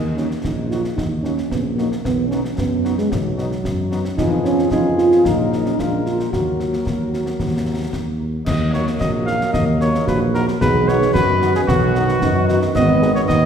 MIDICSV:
0, 0, Header, 1, 7, 480
1, 0, Start_track
1, 0, Key_signature, -6, "minor"
1, 0, Tempo, 535236
1, 865, Time_signature, 2, 2, 24, 8
1, 12066, End_track
2, 0, Start_track
2, 0, Title_t, "Cornet"
2, 0, Program_c, 0, 56
2, 161, Note_on_c, 0, 66, 38
2, 244, Note_off_c, 0, 66, 0
2, 644, Note_on_c, 0, 66, 49
2, 727, Note_off_c, 0, 66, 0
2, 1115, Note_on_c, 0, 66, 46
2, 1199, Note_off_c, 0, 66, 0
2, 1595, Note_on_c, 0, 66, 47
2, 1679, Note_off_c, 0, 66, 0
2, 2072, Note_on_c, 0, 66, 44
2, 2157, Note_off_c, 0, 66, 0
2, 2548, Note_on_c, 0, 66, 57
2, 2634, Note_off_c, 0, 66, 0
2, 3015, Note_on_c, 0, 66, 49
2, 3104, Note_off_c, 0, 66, 0
2, 3494, Note_on_c, 0, 66, 57
2, 3584, Note_off_c, 0, 66, 0
2, 3737, Note_on_c, 0, 68, 60
2, 4189, Note_off_c, 0, 68, 0
2, 4226, Note_on_c, 0, 68, 64
2, 4706, Note_on_c, 0, 70, 61
2, 4720, Note_off_c, 0, 68, 0
2, 5180, Note_off_c, 0, 70, 0
2, 5185, Note_on_c, 0, 70, 57
2, 5634, Note_off_c, 0, 70, 0
2, 5672, Note_on_c, 0, 70, 49
2, 7315, Note_off_c, 0, 70, 0
2, 7589, Note_on_c, 0, 75, 89
2, 7812, Note_off_c, 0, 75, 0
2, 7837, Note_on_c, 0, 73, 86
2, 7944, Note_off_c, 0, 73, 0
2, 8067, Note_on_c, 0, 75, 91
2, 8175, Note_off_c, 0, 75, 0
2, 8302, Note_on_c, 0, 77, 94
2, 8529, Note_off_c, 0, 77, 0
2, 8546, Note_on_c, 0, 75, 88
2, 8655, Note_off_c, 0, 75, 0
2, 8796, Note_on_c, 0, 73, 88
2, 9016, Note_off_c, 0, 73, 0
2, 9035, Note_on_c, 0, 71, 90
2, 9142, Note_off_c, 0, 71, 0
2, 9277, Note_on_c, 0, 70, 104
2, 9383, Note_off_c, 0, 70, 0
2, 9514, Note_on_c, 0, 71, 104
2, 9759, Note_on_c, 0, 73, 110
2, 9773, Note_off_c, 0, 71, 0
2, 9979, Note_off_c, 0, 73, 0
2, 9985, Note_on_c, 0, 71, 111
2, 10321, Note_off_c, 0, 71, 0
2, 10361, Note_on_c, 0, 68, 98
2, 10412, Note_off_c, 0, 68, 0
2, 10470, Note_on_c, 0, 66, 112
2, 11393, Note_off_c, 0, 66, 0
2, 11441, Note_on_c, 0, 75, 104
2, 11770, Note_off_c, 0, 75, 0
2, 11793, Note_on_c, 0, 73, 107
2, 11846, Note_off_c, 0, 73, 0
2, 11909, Note_on_c, 0, 75, 113
2, 12066, Note_off_c, 0, 75, 0
2, 12066, End_track
3, 0, Start_track
3, 0, Title_t, "Euphonium"
3, 0, Program_c, 1, 58
3, 141, Note_on_c, 1, 61, 63
3, 250, Note_off_c, 1, 61, 0
3, 391, Note_on_c, 1, 63, 61
3, 612, Note_off_c, 1, 63, 0
3, 621, Note_on_c, 1, 65, 63
3, 730, Note_off_c, 1, 65, 0
3, 856, Note_on_c, 1, 63, 68
3, 966, Note_off_c, 1, 63, 0
3, 1101, Note_on_c, 1, 61, 61
3, 1327, Note_off_c, 1, 61, 0
3, 1353, Note_on_c, 1, 59, 58
3, 1459, Note_off_c, 1, 59, 0
3, 1578, Note_on_c, 1, 58, 60
3, 1688, Note_off_c, 1, 58, 0
3, 1835, Note_on_c, 1, 59, 73
3, 2044, Note_off_c, 1, 59, 0
3, 2049, Note_on_c, 1, 61, 70
3, 2161, Note_off_c, 1, 61, 0
3, 2303, Note_on_c, 1, 59, 69
3, 2640, Note_off_c, 1, 59, 0
3, 2671, Note_on_c, 1, 56, 71
3, 2785, Note_on_c, 1, 54, 70
3, 2798, Note_off_c, 1, 56, 0
3, 3736, Note_off_c, 1, 54, 0
3, 3741, Note_on_c, 1, 63, 89
3, 3851, Note_off_c, 1, 63, 0
3, 3982, Note_on_c, 1, 61, 87
3, 4208, Note_off_c, 1, 61, 0
3, 4234, Note_on_c, 1, 63, 76
3, 4455, Note_off_c, 1, 63, 0
3, 4468, Note_on_c, 1, 65, 86
3, 4710, Note_on_c, 1, 63, 82
3, 4723, Note_off_c, 1, 65, 0
3, 5091, Note_on_c, 1, 61, 74
3, 5104, Note_off_c, 1, 63, 0
3, 5198, Note_on_c, 1, 62, 64
3, 5211, Note_off_c, 1, 61, 0
3, 5416, Note_off_c, 1, 62, 0
3, 5422, Note_on_c, 1, 65, 63
3, 5532, Note_off_c, 1, 65, 0
3, 5668, Note_on_c, 1, 66, 64
3, 7073, Note_off_c, 1, 66, 0
3, 8067, Note_on_c, 1, 66, 66
3, 8515, Note_off_c, 1, 66, 0
3, 8546, Note_on_c, 1, 63, 76
3, 8994, Note_off_c, 1, 63, 0
3, 9032, Note_on_c, 1, 66, 80
3, 9477, Note_off_c, 1, 66, 0
3, 9521, Note_on_c, 1, 68, 84
3, 9962, Note_off_c, 1, 68, 0
3, 9994, Note_on_c, 1, 66, 92
3, 10915, Note_off_c, 1, 66, 0
3, 10957, Note_on_c, 1, 63, 87
3, 11399, Note_off_c, 1, 63, 0
3, 11423, Note_on_c, 1, 59, 93
3, 11898, Note_on_c, 1, 63, 83
3, 11911, Note_off_c, 1, 59, 0
3, 12066, Note_off_c, 1, 63, 0
3, 12066, End_track
4, 0, Start_track
4, 0, Title_t, "French horn section"
4, 0, Program_c, 2, 60
4, 149, Note_on_c, 2, 54, 44
4, 150, Note_on_c, 2, 58, 42
4, 152, Note_on_c, 2, 63, 39
4, 235, Note_off_c, 2, 54, 0
4, 236, Note_off_c, 2, 58, 0
4, 237, Note_off_c, 2, 63, 0
4, 632, Note_on_c, 2, 63, 42
4, 637, Note_on_c, 2, 54, 38
4, 638, Note_on_c, 2, 58, 39
4, 717, Note_off_c, 2, 63, 0
4, 721, Note_off_c, 2, 54, 0
4, 722, Note_off_c, 2, 58, 0
4, 1117, Note_on_c, 2, 63, 41
4, 1118, Note_on_c, 2, 54, 43
4, 1121, Note_on_c, 2, 58, 47
4, 1201, Note_off_c, 2, 63, 0
4, 1202, Note_off_c, 2, 54, 0
4, 1204, Note_off_c, 2, 58, 0
4, 1591, Note_on_c, 2, 54, 46
4, 1593, Note_on_c, 2, 58, 45
4, 1593, Note_on_c, 2, 63, 45
4, 1677, Note_off_c, 2, 54, 0
4, 1678, Note_off_c, 2, 58, 0
4, 1678, Note_off_c, 2, 63, 0
4, 2081, Note_on_c, 2, 54, 47
4, 2081, Note_on_c, 2, 59, 51
4, 2083, Note_on_c, 2, 63, 47
4, 2164, Note_off_c, 2, 54, 0
4, 2164, Note_off_c, 2, 59, 0
4, 2166, Note_off_c, 2, 63, 0
4, 2554, Note_on_c, 2, 59, 51
4, 2556, Note_on_c, 2, 63, 49
4, 2558, Note_on_c, 2, 54, 55
4, 2639, Note_off_c, 2, 59, 0
4, 2640, Note_off_c, 2, 63, 0
4, 2642, Note_off_c, 2, 54, 0
4, 3019, Note_on_c, 2, 59, 58
4, 3022, Note_on_c, 2, 63, 56
4, 3027, Note_on_c, 2, 54, 55
4, 3107, Note_off_c, 2, 59, 0
4, 3110, Note_off_c, 2, 63, 0
4, 3114, Note_off_c, 2, 54, 0
4, 3508, Note_on_c, 2, 63, 56
4, 3512, Note_on_c, 2, 54, 60
4, 3512, Note_on_c, 2, 59, 59
4, 3594, Note_off_c, 2, 63, 0
4, 3597, Note_off_c, 2, 59, 0
4, 3598, Note_off_c, 2, 54, 0
4, 3745, Note_on_c, 2, 53, 69
4, 3746, Note_on_c, 2, 59, 68
4, 3746, Note_on_c, 2, 65, 70
4, 4193, Note_off_c, 2, 53, 0
4, 4194, Note_off_c, 2, 59, 0
4, 4194, Note_off_c, 2, 65, 0
4, 4223, Note_on_c, 2, 65, 55
4, 4225, Note_on_c, 2, 59, 53
4, 4229, Note_on_c, 2, 53, 54
4, 4672, Note_off_c, 2, 65, 0
4, 4673, Note_off_c, 2, 59, 0
4, 4675, Note_off_c, 2, 53, 0
4, 4710, Note_on_c, 2, 54, 64
4, 4710, Note_on_c, 2, 58, 60
4, 4713, Note_on_c, 2, 63, 59
4, 5182, Note_off_c, 2, 58, 0
4, 5190, Note_off_c, 2, 54, 0
4, 5191, Note_off_c, 2, 63, 0
4, 5193, Note_on_c, 2, 58, 50
4, 5194, Note_on_c, 2, 56, 51
4, 5194, Note_on_c, 2, 65, 49
4, 5638, Note_off_c, 2, 58, 0
4, 5663, Note_on_c, 2, 54, 49
4, 5666, Note_on_c, 2, 66, 47
4, 5668, Note_on_c, 2, 58, 48
4, 5672, Note_off_c, 2, 56, 0
4, 5672, Note_off_c, 2, 65, 0
4, 7311, Note_off_c, 2, 54, 0
4, 7312, Note_off_c, 2, 66, 0
4, 7313, Note_off_c, 2, 58, 0
4, 7833, Note_on_c, 2, 58, 57
4, 7833, Note_on_c, 2, 66, 63
4, 7835, Note_on_c, 2, 63, 55
4, 7918, Note_off_c, 2, 58, 0
4, 7919, Note_off_c, 2, 66, 0
4, 7920, Note_off_c, 2, 63, 0
4, 8310, Note_on_c, 2, 63, 55
4, 8311, Note_on_c, 2, 58, 57
4, 8313, Note_on_c, 2, 66, 57
4, 8396, Note_off_c, 2, 63, 0
4, 8397, Note_off_c, 2, 58, 0
4, 8398, Note_off_c, 2, 66, 0
4, 8786, Note_on_c, 2, 58, 63
4, 8787, Note_on_c, 2, 63, 58
4, 8789, Note_on_c, 2, 66, 62
4, 8873, Note_off_c, 2, 58, 0
4, 8874, Note_off_c, 2, 63, 0
4, 8875, Note_off_c, 2, 66, 0
4, 9278, Note_on_c, 2, 63, 63
4, 9278, Note_on_c, 2, 66, 68
4, 9280, Note_on_c, 2, 58, 62
4, 9362, Note_off_c, 2, 66, 0
4, 9363, Note_off_c, 2, 63, 0
4, 9364, Note_off_c, 2, 58, 0
4, 9754, Note_on_c, 2, 59, 71
4, 9756, Note_on_c, 2, 63, 70
4, 9756, Note_on_c, 2, 66, 66
4, 9839, Note_off_c, 2, 59, 0
4, 9840, Note_off_c, 2, 63, 0
4, 9841, Note_off_c, 2, 66, 0
4, 10234, Note_on_c, 2, 59, 73
4, 10235, Note_on_c, 2, 63, 68
4, 10235, Note_on_c, 2, 66, 82
4, 10319, Note_off_c, 2, 59, 0
4, 10320, Note_off_c, 2, 63, 0
4, 10320, Note_off_c, 2, 66, 0
4, 10707, Note_on_c, 2, 59, 74
4, 10708, Note_on_c, 2, 63, 77
4, 10715, Note_on_c, 2, 66, 76
4, 10794, Note_off_c, 2, 59, 0
4, 10794, Note_off_c, 2, 63, 0
4, 10800, Note_off_c, 2, 66, 0
4, 11193, Note_on_c, 2, 66, 75
4, 11195, Note_on_c, 2, 59, 71
4, 11196, Note_on_c, 2, 63, 77
4, 11279, Note_off_c, 2, 66, 0
4, 11280, Note_off_c, 2, 59, 0
4, 11281, Note_off_c, 2, 63, 0
4, 11666, Note_on_c, 2, 63, 76
4, 11667, Note_on_c, 2, 59, 76
4, 11669, Note_on_c, 2, 68, 69
4, 11753, Note_off_c, 2, 63, 0
4, 11754, Note_off_c, 2, 59, 0
4, 11755, Note_off_c, 2, 68, 0
4, 12066, End_track
5, 0, Start_track
5, 0, Title_t, "Trombone section"
5, 0, Program_c, 3, 61
5, 7617, Note_on_c, 3, 54, 70
5, 7617, Note_on_c, 3, 58, 64
5, 9487, Note_off_c, 3, 54, 0
5, 9487, Note_off_c, 3, 58, 0
5, 9514, Note_on_c, 3, 59, 76
5, 9518, Note_on_c, 3, 51, 82
5, 11413, Note_off_c, 3, 51, 0
5, 11421, Note_off_c, 3, 59, 0
5, 11424, Note_on_c, 3, 51, 91
5, 11432, Note_on_c, 3, 59, 80
5, 12066, Note_off_c, 3, 51, 0
5, 12066, Note_off_c, 3, 59, 0
5, 12066, End_track
6, 0, Start_track
6, 0, Title_t, "Tuba"
6, 0, Program_c, 4, 58
6, 0, Note_on_c, 4, 39, 58
6, 307, Note_off_c, 4, 39, 0
6, 378, Note_on_c, 4, 34, 58
6, 782, Note_off_c, 4, 34, 0
6, 866, Note_on_c, 4, 39, 53
6, 1266, Note_off_c, 4, 39, 0
6, 1346, Note_on_c, 4, 34, 53
6, 1746, Note_off_c, 4, 34, 0
6, 1819, Note_on_c, 4, 35, 63
6, 2181, Note_off_c, 4, 35, 0
6, 2302, Note_on_c, 4, 42, 66
6, 2705, Note_off_c, 4, 42, 0
6, 2781, Note_on_c, 4, 35, 66
6, 3184, Note_off_c, 4, 35, 0
6, 3259, Note_on_c, 4, 42, 65
6, 3663, Note_off_c, 4, 42, 0
6, 3743, Note_on_c, 4, 41, 74
6, 4169, Note_off_c, 4, 41, 0
6, 4222, Note_on_c, 4, 41, 71
6, 4649, Note_off_c, 4, 41, 0
6, 4701, Note_on_c, 4, 34, 71
6, 5129, Note_off_c, 4, 34, 0
6, 5185, Note_on_c, 4, 34, 57
6, 5610, Note_off_c, 4, 34, 0
6, 5669, Note_on_c, 4, 39, 54
6, 6093, Note_off_c, 4, 39, 0
6, 6148, Note_on_c, 4, 39, 48
6, 6572, Note_off_c, 4, 39, 0
6, 6627, Note_on_c, 4, 39, 47
6, 7052, Note_off_c, 4, 39, 0
6, 7106, Note_on_c, 4, 39, 50
6, 7531, Note_off_c, 4, 39, 0
6, 7588, Note_on_c, 4, 39, 74
6, 7989, Note_off_c, 4, 39, 0
6, 8079, Note_on_c, 4, 34, 68
6, 8474, Note_off_c, 4, 34, 0
6, 8559, Note_on_c, 4, 39, 77
6, 8954, Note_off_c, 4, 39, 0
6, 9032, Note_on_c, 4, 34, 78
6, 9430, Note_off_c, 4, 34, 0
6, 9508, Note_on_c, 4, 35, 86
6, 9908, Note_off_c, 4, 35, 0
6, 9989, Note_on_c, 4, 42, 90
6, 10389, Note_off_c, 4, 42, 0
6, 10468, Note_on_c, 4, 35, 98
6, 10868, Note_off_c, 4, 35, 0
6, 10955, Note_on_c, 4, 42, 101
6, 11351, Note_off_c, 4, 42, 0
6, 11433, Note_on_c, 4, 32, 96
6, 11831, Note_off_c, 4, 32, 0
6, 11918, Note_on_c, 4, 39, 94
6, 12066, Note_off_c, 4, 39, 0
6, 12066, End_track
7, 0, Start_track
7, 0, Title_t, "Drums"
7, 157, Note_on_c, 9, 38, 38
7, 247, Note_off_c, 9, 38, 0
7, 279, Note_on_c, 9, 38, 40
7, 369, Note_off_c, 9, 38, 0
7, 400, Note_on_c, 9, 35, 63
7, 400, Note_on_c, 9, 38, 55
7, 489, Note_off_c, 9, 35, 0
7, 489, Note_off_c, 9, 38, 0
7, 641, Note_on_c, 9, 38, 44
7, 731, Note_off_c, 9, 38, 0
7, 757, Note_on_c, 9, 38, 43
7, 847, Note_off_c, 9, 38, 0
7, 878, Note_on_c, 9, 35, 71
7, 878, Note_on_c, 9, 38, 60
7, 968, Note_off_c, 9, 35, 0
7, 968, Note_off_c, 9, 38, 0
7, 1118, Note_on_c, 9, 38, 41
7, 1208, Note_off_c, 9, 38, 0
7, 1237, Note_on_c, 9, 38, 44
7, 1327, Note_off_c, 9, 38, 0
7, 1359, Note_on_c, 9, 35, 64
7, 1359, Note_on_c, 9, 38, 63
7, 1449, Note_off_c, 9, 35, 0
7, 1449, Note_off_c, 9, 38, 0
7, 1600, Note_on_c, 9, 38, 43
7, 1689, Note_off_c, 9, 38, 0
7, 1722, Note_on_c, 9, 38, 45
7, 1812, Note_off_c, 9, 38, 0
7, 1840, Note_on_c, 9, 35, 69
7, 1840, Note_on_c, 9, 38, 67
7, 1930, Note_off_c, 9, 35, 0
7, 1930, Note_off_c, 9, 38, 0
7, 2076, Note_on_c, 9, 38, 47
7, 2166, Note_off_c, 9, 38, 0
7, 2197, Note_on_c, 9, 38, 43
7, 2286, Note_off_c, 9, 38, 0
7, 2316, Note_on_c, 9, 35, 61
7, 2316, Note_on_c, 9, 38, 66
7, 2405, Note_off_c, 9, 35, 0
7, 2405, Note_off_c, 9, 38, 0
7, 2555, Note_on_c, 9, 38, 46
7, 2645, Note_off_c, 9, 38, 0
7, 2675, Note_on_c, 9, 38, 47
7, 2765, Note_off_c, 9, 38, 0
7, 2797, Note_on_c, 9, 35, 75
7, 2797, Note_on_c, 9, 38, 68
7, 2886, Note_off_c, 9, 35, 0
7, 2886, Note_off_c, 9, 38, 0
7, 3037, Note_on_c, 9, 38, 46
7, 3126, Note_off_c, 9, 38, 0
7, 3155, Note_on_c, 9, 38, 38
7, 3245, Note_off_c, 9, 38, 0
7, 3275, Note_on_c, 9, 35, 61
7, 3275, Note_on_c, 9, 38, 66
7, 3365, Note_off_c, 9, 35, 0
7, 3365, Note_off_c, 9, 38, 0
7, 3514, Note_on_c, 9, 38, 48
7, 3604, Note_off_c, 9, 38, 0
7, 3631, Note_on_c, 9, 38, 51
7, 3721, Note_off_c, 9, 38, 0
7, 3751, Note_on_c, 9, 35, 77
7, 3751, Note_on_c, 9, 38, 65
7, 3751, Note_on_c, 9, 49, 29
7, 3841, Note_off_c, 9, 35, 0
7, 3841, Note_off_c, 9, 38, 0
7, 3841, Note_off_c, 9, 49, 0
7, 3992, Note_on_c, 9, 38, 48
7, 4082, Note_off_c, 9, 38, 0
7, 4114, Note_on_c, 9, 38, 41
7, 4203, Note_off_c, 9, 38, 0
7, 4226, Note_on_c, 9, 35, 62
7, 4226, Note_on_c, 9, 38, 59
7, 4315, Note_off_c, 9, 35, 0
7, 4315, Note_off_c, 9, 38, 0
7, 4470, Note_on_c, 9, 38, 45
7, 4560, Note_off_c, 9, 38, 0
7, 4591, Note_on_c, 9, 38, 47
7, 4681, Note_off_c, 9, 38, 0
7, 4710, Note_on_c, 9, 35, 72
7, 4710, Note_on_c, 9, 38, 72
7, 4799, Note_off_c, 9, 35, 0
7, 4799, Note_off_c, 9, 38, 0
7, 4957, Note_on_c, 9, 38, 45
7, 5047, Note_off_c, 9, 38, 0
7, 5075, Note_on_c, 9, 38, 40
7, 5165, Note_off_c, 9, 38, 0
7, 5195, Note_on_c, 9, 35, 55
7, 5195, Note_on_c, 9, 38, 62
7, 5285, Note_off_c, 9, 35, 0
7, 5285, Note_off_c, 9, 38, 0
7, 5436, Note_on_c, 9, 38, 43
7, 5525, Note_off_c, 9, 38, 0
7, 5559, Note_on_c, 9, 38, 46
7, 5648, Note_off_c, 9, 38, 0
7, 5677, Note_on_c, 9, 35, 70
7, 5677, Note_on_c, 9, 38, 62
7, 5767, Note_off_c, 9, 35, 0
7, 5767, Note_off_c, 9, 38, 0
7, 5919, Note_on_c, 9, 38, 39
7, 6008, Note_off_c, 9, 38, 0
7, 6038, Note_on_c, 9, 38, 43
7, 6127, Note_off_c, 9, 38, 0
7, 6159, Note_on_c, 9, 35, 55
7, 6159, Note_on_c, 9, 38, 58
7, 6249, Note_off_c, 9, 35, 0
7, 6249, Note_off_c, 9, 38, 0
7, 6401, Note_on_c, 9, 38, 44
7, 6491, Note_off_c, 9, 38, 0
7, 6515, Note_on_c, 9, 38, 47
7, 6605, Note_off_c, 9, 38, 0
7, 6632, Note_on_c, 9, 35, 62
7, 6632, Note_on_c, 9, 38, 53
7, 6722, Note_off_c, 9, 35, 0
7, 6722, Note_off_c, 9, 38, 0
7, 7113, Note_on_c, 9, 35, 55
7, 7113, Note_on_c, 9, 38, 58
7, 7203, Note_off_c, 9, 35, 0
7, 7203, Note_off_c, 9, 38, 0
7, 7595, Note_on_c, 9, 35, 80
7, 7595, Note_on_c, 9, 38, 74
7, 7595, Note_on_c, 9, 49, 54
7, 7685, Note_off_c, 9, 35, 0
7, 7685, Note_off_c, 9, 38, 0
7, 7685, Note_off_c, 9, 49, 0
7, 7836, Note_on_c, 9, 38, 50
7, 7926, Note_off_c, 9, 38, 0
7, 7957, Note_on_c, 9, 38, 53
7, 8047, Note_off_c, 9, 38, 0
7, 8080, Note_on_c, 9, 35, 70
7, 8080, Note_on_c, 9, 38, 68
7, 8169, Note_off_c, 9, 35, 0
7, 8169, Note_off_c, 9, 38, 0
7, 8317, Note_on_c, 9, 38, 52
7, 8407, Note_off_c, 9, 38, 0
7, 8441, Note_on_c, 9, 38, 51
7, 8531, Note_off_c, 9, 38, 0
7, 8554, Note_on_c, 9, 35, 78
7, 8554, Note_on_c, 9, 38, 72
7, 8644, Note_off_c, 9, 35, 0
7, 8644, Note_off_c, 9, 38, 0
7, 8796, Note_on_c, 9, 38, 54
7, 8886, Note_off_c, 9, 38, 0
7, 8921, Note_on_c, 9, 38, 51
7, 9011, Note_off_c, 9, 38, 0
7, 9037, Note_on_c, 9, 35, 71
7, 9037, Note_on_c, 9, 38, 66
7, 9126, Note_off_c, 9, 35, 0
7, 9126, Note_off_c, 9, 38, 0
7, 9278, Note_on_c, 9, 38, 55
7, 9368, Note_off_c, 9, 38, 0
7, 9400, Note_on_c, 9, 38, 53
7, 9489, Note_off_c, 9, 38, 0
7, 9518, Note_on_c, 9, 35, 85
7, 9518, Note_on_c, 9, 38, 76
7, 9608, Note_off_c, 9, 35, 0
7, 9608, Note_off_c, 9, 38, 0
7, 9763, Note_on_c, 9, 38, 55
7, 9853, Note_off_c, 9, 38, 0
7, 9883, Note_on_c, 9, 38, 52
7, 9973, Note_off_c, 9, 38, 0
7, 10001, Note_on_c, 9, 35, 79
7, 10001, Note_on_c, 9, 38, 77
7, 10091, Note_off_c, 9, 35, 0
7, 10091, Note_off_c, 9, 38, 0
7, 10242, Note_on_c, 9, 38, 50
7, 10332, Note_off_c, 9, 38, 0
7, 10359, Note_on_c, 9, 38, 58
7, 10448, Note_off_c, 9, 38, 0
7, 10479, Note_on_c, 9, 35, 86
7, 10479, Note_on_c, 9, 38, 78
7, 10568, Note_off_c, 9, 35, 0
7, 10568, Note_off_c, 9, 38, 0
7, 10717, Note_on_c, 9, 38, 52
7, 10807, Note_off_c, 9, 38, 0
7, 10838, Note_on_c, 9, 38, 53
7, 10927, Note_off_c, 9, 38, 0
7, 10956, Note_on_c, 9, 35, 76
7, 10956, Note_on_c, 9, 38, 74
7, 11046, Note_off_c, 9, 35, 0
7, 11046, Note_off_c, 9, 38, 0
7, 11201, Note_on_c, 9, 38, 59
7, 11291, Note_off_c, 9, 38, 0
7, 11317, Note_on_c, 9, 38, 55
7, 11406, Note_off_c, 9, 38, 0
7, 11438, Note_on_c, 9, 35, 82
7, 11438, Note_on_c, 9, 38, 82
7, 11438, Note_on_c, 9, 49, 32
7, 11528, Note_off_c, 9, 35, 0
7, 11528, Note_off_c, 9, 38, 0
7, 11528, Note_off_c, 9, 49, 0
7, 11679, Note_on_c, 9, 38, 51
7, 11768, Note_off_c, 9, 38, 0
7, 11799, Note_on_c, 9, 38, 47
7, 11889, Note_off_c, 9, 38, 0
7, 11922, Note_on_c, 9, 35, 74
7, 11922, Note_on_c, 9, 38, 73
7, 12012, Note_off_c, 9, 35, 0
7, 12012, Note_off_c, 9, 38, 0
7, 12066, End_track
0, 0, End_of_file